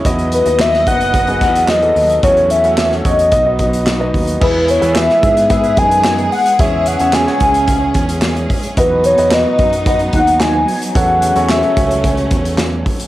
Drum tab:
CC |----------------|----------------|x---------------|----------------|
HH |xxxx--xxxxxx-xox|xxxx--xxx-xx--ox|--xx--xxxxxx-xox|x-xx--xxx-xx-xox|
CP |----x-------x---|----x-------x---|----x-------x---|----x-------x---|
SD |----oo------o---|----oo------o---|----oo------o---|----oo------o---|
BD |o-----o-o-o-----|o-----o-o-o---o-|o-----o-o-o-----|o-----o-o-o---o-|

CC |----------------|----------------|
HH |x-xx--xxxxxx--ox|x-xx-xxxxxxx--ox|
CP |----x-------x---|----x-------x---|
SD |----o-------o---|----o-------o---|
BD |o-----o-o-o-----|o-----o-o-o---o-|